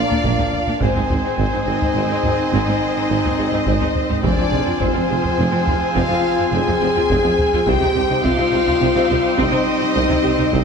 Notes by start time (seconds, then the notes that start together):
Already playing: F3 A#3 D4 F4 A#4 D5 F5
0.10 A#2 A#3 D4, taiko low
0.24 A#1 A#2 A#3, taiko
0.39 A#2 A#3 D4, taiko low
0.53 taiko low
0.67 A#2 A#3 D4, taiko low
0.80 G#1 G#2 D#3 C4 D#4 G#4 C5 G#5, taiko
0.96 G#2 C4 D#4, taiko low
1.10 G#1 G#2 C4 G#4, taiko low
1.25 G#2 C4 D#4
1.37 G#1 G#2 C4 C5, taiko
1.53 G#2 C4 D#4
1.66 G#1 G#2 C4 D#4 G#4 D#5
1.82 G#2 C4 D#4, taiko low
1.94 G#1 G#2 C4
2.11 G#2 C4 D#4
2.23 G#1 G#2 C4 G#4, taiko low
2.53 G#1 G#2 C4, taiko
2.68 G#2 C4 D#4
2.96 G#2 C4 D#4
3.10 G#1 G#2 C4
3.25 G#2 C4 D#4, taiko low
3.38 G#1 G#2 C4 G#4
3.52 G#2 C4 D#4, taiko low
3.66 G#1 G#2 C4, taiko
3.80 G#2 C4 D#4, taiko low
3.96 taiko low
4.09 G#2 C4 D#4, taiko low
4.20 F1 F2 F3 C4 D4 F4 G#4 C5 G#5
4.24 F1 D5, taiko
4.38 F2 C4 F4, taiko low
4.52 F1 F2 C4 G#4, taiko low
4.66 F2 C4 F4
4.79 F1 F2 C4 C5, taiko
4.93 F2 C4 F4
5.08 F1 F2 C4 G#4
5.22 F2 C4 F4, taiko low
5.37 F1 F2 C4
5.51 F2 C4 F4
5.66 F1 F2 C4 G#4, taiko low
5.94 F1 F2 C4 F4 F5, taiko
6.09 F2 C4 F4
6.38 F2 C4 F4
6.52 F1 F2 C4 G#4 G#5
6.67 F2 C4 F4, taiko low
6.81 F1 F2 C4 G#4
6.96 F2 C4 F4, taiko low
7.09 F1 F2 C4, taiko
7.23 F2 C4 F4, taiko low
7.38 taiko low
7.53 F2 C4 F4, taiko low
7.66 C2 C3 G3 C4 D#4 G4 C5 G5, taiko
7.80 C3 C4 D#4, taiko low
7.95 C2 C3 C4 G4, taiko low
8.09 C3 C4 D#4
8.23 C2 C3 C4 F4 F5, taiko
8.37 C3 C4 D#4
8.51 C2 C3 C4 G4
8.66 C3 C4 D#4, taiko low
8.80 C2 C3 C4
8.95 C3 C4 D#4
9.10 C2 C3 C4 G4, taiko low
9.37 C2 C3 C4 D#4 D#5, taiko
9.52 C3 C4 D#4
9.80 C3 C4 D#4
9.95 C2 C3 C4
10.08 C3 C4 D#4, taiko low
10.23 C2 C3 C4 G4
10.38 C3 C4 D#4, taiko low
10.52 C2 C3 C4, taiko